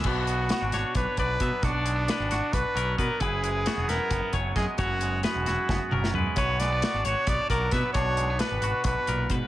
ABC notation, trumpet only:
X:1
M:7/8
L:1/8
Q:1/4=133
K:B
V:1 name="Trumpet"
F4 B B2 | =D4 B2 A | G3 A2 z G | F2 F4 z |
c =d2 c d A B | c2 B2 B2 z |]